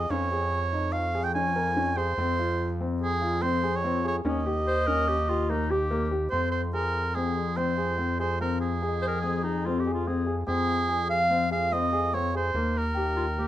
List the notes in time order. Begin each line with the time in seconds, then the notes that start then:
Already playing: D#5
0.10 F2 C#4 C#5
0.32 G#4
0.61 C#6
0.73 D#4
0.92 F5
1.15 G#4
1.24 G5
1.34 C#4 G#5
1.56 A#4
1.76 C#4
1.97 G#4 C5
2.18 F2 C4
2.39 F4
2.81 C4
3.01 G#4
3.21 F4
3.42 C4 C5
3.63 G#4
3.76 C#5
3.84 C4
4.05 G#4 C#5
4.25 D#2 C#4 D#5
4.46 G4
4.68 C5
4.87 C#4 A#4
5.09 G4
5.29 F4 G4
5.50 A#3 D#4
5.71 G4
5.91 A#3
6.11 G4
6.30 F2 C4 C5 C6
6.52 C5
6.74 G#4 A#4
7.15 C4 G#4
7.37 G#4
7.57 C4 C5
7.78 G#4
7.98 C4
8.20 G#4 C5
8.41 C4 A#4
8.60 G#4
8.82 G#4
8.88 D#5
9.02 C5
9.08 A#4
9.21 C4 G#4
9.43 D#4 G#4
9.66 C4 F4
9.80 G4
9.87 G#4
9.94 F4
10.07 C4 G#4
10.26 G#4
10.47 F2 C4 G#4
10.89 G#4
11.10 F5
11.18 F5
11.31 C4
11.51 G#4 F5
11.72 C4 D#5
11.93 G#4
12.14 C4 C#5
12.34 G#4 C5
12.54 D#2 A#3
12.78 A#4
12.94 G4 G5
13.16 F4
13.38 A#3 G4